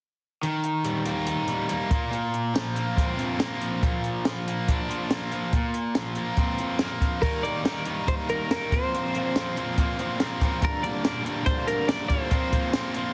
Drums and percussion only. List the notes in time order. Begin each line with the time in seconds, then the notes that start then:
0.43 closed hi-hat
0.64 closed hi-hat
0.85 closed hi-hat
1.06 closed hi-hat
1.27 closed hi-hat
1.48 closed hi-hat
1.69 closed hi-hat
1.91 kick, closed hi-hat
2.13 closed hi-hat
2.34 closed hi-hat
2.56 snare, closed hi-hat, tambourine
2.76 closed hi-hat
2.97 kick, closed hi-hat
3.19 closed hi-hat
3.40 snare, closed hi-hat, tambourine
3.61 closed hi-hat
3.83 kick, closed hi-hat
4.04 closed hi-hat
4.25 snare, closed hi-hat, tambourine
4.48 closed hi-hat
4.68 kick, closed hi-hat
4.91 closed hi-hat
5.11 snare, closed hi-hat, tambourine
5.32 closed hi-hat
5.53 kick, closed hi-hat
5.74 closed hi-hat
5.95 snare, closed hi-hat, tambourine
6.15 closed hi-hat
6.37 kick, closed hi-hat
6.58 closed hi-hat
6.79 snare, closed hi-hat, tambourine
7.01 kick, closed hi-hat
7.23 kick, crash
7.44 closed hi-hat
7.65 snare, closed hi-hat, tambourine
7.85 closed hi-hat
8.08 kick, closed hi-hat
8.29 closed hi-hat
8.51 snare, closed hi-hat, tambourine
8.72 kick, closed hi-hat
8.95 closed hi-hat
9.15 closed hi-hat
9.36 snare, closed hi-hat, tambourine
9.57 closed hi-hat
9.78 kick, closed hi-hat
9.99 closed hi-hat
10.20 snare, closed hi-hat, tambourine
10.41 kick, snare, closed hi-hat
10.62 kick, closed hi-hat
10.84 closed hi-hat
11.05 snare, closed hi-hat, tambourine
11.26 closed hi-hat
11.46 kick, closed hi-hat
11.68 closed hi-hat
11.89 snare, closed hi-hat, tambourine
12.10 kick, closed hi-hat
12.31 kick, closed hi-hat
12.53 kick, closed hi-hat
12.73 snare, closed hi-hat, tambourine
12.94 closed hi-hat